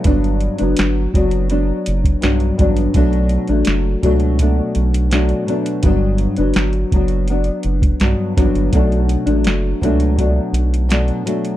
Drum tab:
HH |xxxxx-xxx-xxxxxx|xxxxx-xxx-xxxxxx|x-xxxxxxxxxxx-xx|xxxxx-xxx-xxxxxx|
SD |----o-------o---|----o-------o---|----o-------o-o-|----o-------o---|
BD |o-----o----o--o-|o-----o-o-------|o-----o----o--o-|o-----o-o-------|